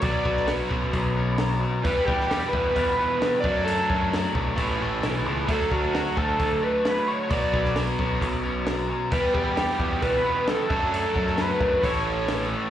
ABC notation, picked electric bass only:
X:1
M:4/4
L:1/16
Q:1/4=132
K:D
V:1 name="Picked electric bass" clef=bass
B,,, z B,,,4 B,,,2 B,,,8 | E,, z E,,4 E,,2 E,,2 z4 F,,2- | F,,2 F,,4 B,,,2 A,,,2 A,,,2 B,,,2 C,,2 | D,, z D,,4 D,,2 D,,2 z6 |
B,,, z B,,,4 B,,,2 B,,,8 | E,, z E,,4 E,,2 E,,2 z4 F,,2- | F,,2 F,,4 F,,2 A,,,8 |]